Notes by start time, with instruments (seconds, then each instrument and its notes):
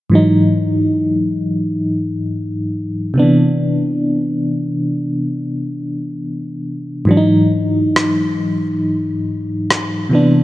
0.10 fm electric piano G#2 E3 F#3
0.15 fm electric piano D#4
3.14 fm electric piano C3 D3 B3
3.19 fm electric piano E3 D4
7.05 fm electric piano G#2 E3 F#3
7.11 fm electric piano D4
7.17 fm electric piano D#4
7.96 cross-stick
9.70 cross-stick
10.09 fm electric piano C3 E3 B3
10.15 fm electric piano D4